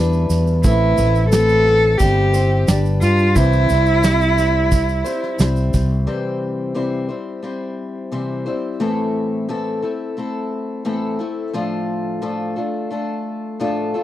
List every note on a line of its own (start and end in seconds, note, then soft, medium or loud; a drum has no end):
0.00 0.28 E2 medium
0.00 0.64 G3 medium
0.00 0.64 D4 medium
0.00 0.64 E4 medium
0.00 0.64 B4 medium
0.13 shaker soft
0.30 0.62 E2 medium
0.30 snare soft
0.30 shaker medium
0.47 shaker soft
0.63 0.97 A1 loud
0.63 0.98 A2 medium
0.63 0.98 E3 medium
0.63 0.98 A3 medium
0.63 0.98 C4 medium
0.63 1.28 E4 medium
0.63 0.98 E4 loud
0.63 0.97 B4 loud
0.63 kick medium
0.63 snare soft
0.63 shaker medium
0.98 1.96 A1 loud
0.98 1.31 A3 soft
0.98 1.32 C4 medium
0.98 1.32 E4 soft
0.98 1.32 B4 medium
0.98 snare soft
0.98 shaker medium
1.15 shaker soft
1.29 1.66 A3 medium
1.29 1.66 C4 medium
1.29 1.65 E4 medium
1.29 1.99 A4 loud
1.29 snare medium
1.29 shaker loud
1.34 1.65 B4 medium
1.49 shaker soft
1.66 2.00 A3 soft
1.66 1.99 C4 soft
1.66 2.00 E4 soft
1.66 2.00 B4 medium
1.66 snare soft
1.98 2.64 G1 medium
1.98 2.34 G3 medium
1.98 2.34 C4 medium
1.98 2.34 E4 medium
1.98 2.67 G4 medium
1.98 2.32 C5 medium
1.98 kick medium
1.98 snare soft
1.98 shaker medium
2.34 2.69 C4 soft
2.34 2.68 E4 medium
2.34 2.68 C5 medium
2.34 snare soft
2.34 shaker medium
2.68 3.00 G1 medium
2.68 3.36 G3 medium
2.68 3.36 D4 medium
2.68 3.37 G4 medium
2.68 3.37 B4 medium
2.68 snare medium
2.68 shaker loud
2.85 shaker soft
3.01 3.34 G2 medium
3.01 3.37 F4 loud
3.01 snare soft
3.01 shaker medium
3.19 shaker soft
3.35 3.68 C2 medium
3.35 3.70 C3 medium
3.35 3.70 E3 medium
3.35 3.70 G3 medium
3.35 3.69 C4 medium
3.35 5.39 E4 loud
3.35 3.69 E4 medium
3.35 3.68 C5 loud
3.35 kick medium
3.35 snare soft
3.35 shaker medium
3.53 shaker soft
3.69 5.02 C2 medium
3.69 4.02 G3 soft
3.69 4.03 C4 soft
3.69 4.04 E4 soft
3.69 4.03 C5 medium
3.69 snare soft
3.69 shaker medium
3.86 shaker soft
4.03 4.37 G3 medium
4.03 4.37 C4 medium
4.03 4.37 E4 medium
4.03 4.36 C5 medium
4.03 snare loud
4.03 shaker medium
4.21 shaker soft
4.37 5.05 G3 soft
4.37 5.04 C4 soft
4.37 5.04 E4 medium
4.37 5.03 C5 medium
4.37 snare soft
4.37 shaker medium
4.72 kick medium
4.72 snare soft
4.72 shaker medium
4.89 shaker soft
5.04 5.37 G3 soft
5.04 5.38 C4 medium
5.04 5.39 E4 medium
5.04 5.39 C5 medium
5.04 snare soft
5.04 shaker medium
5.24 snare soft
5.38 5.72 C2 medium
5.38 6.06 G3 medium
5.38 6.06 C4 medium
5.38 6.07 E4 medium
5.38 6.07 C5 medium
5.38 snare medium
5.38 shaker medium
5.56 shaker soft
5.74 6.06 C2 medium
5.74 kick medium
5.74 snare soft
5.74 shaker medium
6.07 6.73 C3 medium
6.07 6.75 E3 medium
6.07 6.74 G3 medium
6.07 6.75 C4 medium
6.07 6.76 E4 medium
6.07 6.75 C5 medium
6.75 7.09 C3 medium
6.75 7.10 E3 medium
6.75 7.09 G3 medium
6.75 7.09 C4 medium
6.75 7.08 E4 medium
6.75 7.07 C5 medium
7.09 7.41 G3 soft
7.09 7.42 C4 soft
7.09 7.43 E4 soft
7.09 7.43 C5 soft
7.43 8.11 G3 medium
7.43 8.12 C4 medium
7.43 8.12 E4 medium
7.43 8.12 C5 medium
8.12 8.46 C3 medium
8.12 8.47 E3 medium
8.12 8.47 G3 medium
8.12 8.46 C4 medium
8.12 8.45 E4 medium
8.12 8.45 C5 medium
8.46 8.80 G3 soft
8.46 8.80 C4 soft
8.46 8.80 E4 soft
8.46 8.80 C5 soft
8.80 9.47 A2 medium
8.80 9.48 E3 medium
8.80 9.49 A3 medium
8.80 9.49 C4 medium
8.80 9.49 E4 medium
8.80 9.50 A4 medium
9.49 9.83 A2 medium
9.49 9.83 E3 medium
9.49 9.83 A3 medium
9.49 9.83 C4 medium
9.49 9.82 E4 medium
9.49 9.81 A4 medium
9.82 10.16 A3 soft
9.82 10.16 C4 soft
9.82 10.17 E4 soft
9.82 10.17 A4 soft
10.17 10.84 A3 soft
10.17 10.85 C4 medium
10.17 10.85 E4 medium
10.17 10.85 A4 medium
10.85 11.20 A2 medium
10.85 11.20 E3 medium
10.85 11.20 A3 medium
10.85 11.19 C4 medium
10.85 11.19 E4 medium
10.85 11.18 A4 medium
11.19 11.53 A3 soft
11.19 11.54 C4 soft
11.19 11.54 E4 soft
11.19 11.54 A4 soft
11.54 12.20 A2 medium
11.54 12.21 F3 medium
11.54 12.21 A3 medium
11.54 12.22 D4 medium
11.54 12.22 F4 medium
11.54 12.22 A4 medium
12.22 12.57 A2 medium
12.22 12.57 F3 medium
12.22 12.57 A3 medium
12.22 12.57 D4 medium
12.22 12.56 F4 medium
12.22 12.55 A4 medium
12.56 12.89 A3 soft
12.56 12.90 D4 soft
12.56 12.91 F4 soft
12.56 12.91 A4 soft
12.91 13.59 A3 medium
12.91 13.60 D4 medium
12.91 13.60 F4 medium
12.91 13.60 A4 medium
13.60 13.94 A2 medium
13.60 13.95 F3 medium
13.60 13.95 A3 medium
13.60 13.94 D4 medium
13.60 13.94 F4 medium
13.60 13.93 A4 medium
13.94 14.03 A3 soft
13.94 14.03 D4 soft
13.94 14.03 F4 soft
13.94 14.03 A4 soft